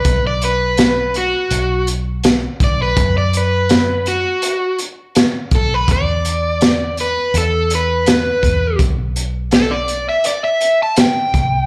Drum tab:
HH |xxxxxxxx|xxxxxxxx|xxxxxxxx|xxxxxxxx|
SD |--o---o-|--o---o-|--o---o-|--o---o-|
BD |o------o|o------o|o------o|o------o|